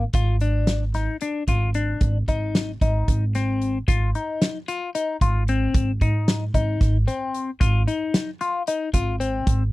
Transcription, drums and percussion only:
0.13 kick, closed hi-hat
0.40 closed hi-hat
0.67 snare, closed hi-hat
0.94 snare, closed hi-hat
1.21 closed hi-hat
1.48 kick, closed hi-hat
1.74 closed hi-hat
2.01 kick, closed hi-hat
2.28 kick, closed hi-hat
2.55 snare, closed hi-hat
2.81 kick, closed hi-hat
3.08 kick, closed hi-hat
3.35 snare, closed hi-hat
3.62 closed hi-hat
3.88 kick, closed hi-hat
4.15 closed hi-hat
4.42 snare, closed hi-hat
4.68 closed hi-hat
4.95 closed hi-hat
5.21 kick, closed hi-hat
5.48 closed hi-hat
5.74 kick, closed hi-hat
6.01 kick, closed hi-hat
6.28 snare, closed hi-hat
6.54 kick, closed hi-hat
6.81 kick, snare, closed hi-hat
7.08 closed hi-hat
7.34 closed hi-hat
7.61 kick, closed hi-hat
7.88 closed hi-hat
8.14 snare, closed hi-hat
8.41 closed hi-hat
8.67 closed hi-hat
8.94 kick, closed hi-hat
9.21 closed hi-hat
9.47 kick, closed hi-hat

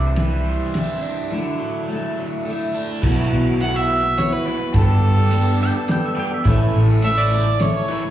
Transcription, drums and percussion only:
0.16 snare, ride
0.74 snare, ride
3.03 kick, crash
3.60 closed hi-hat
4.18 snare, closed hi-hat
4.74 kick, closed hi-hat
5.31 closed hi-hat
5.88 snare, closed hi-hat
6.45 kick, closed hi-hat
7.02 closed hi-hat
7.59 snare, closed hi-hat

